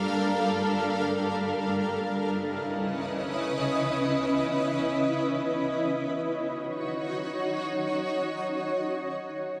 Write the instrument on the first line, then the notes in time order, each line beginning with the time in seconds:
ambient pad
Already playing: G3 D4 A4 A#4 F5
1.97 C#3 C#4 E4 B4 D#5
5.81 D#4 F#4 C#5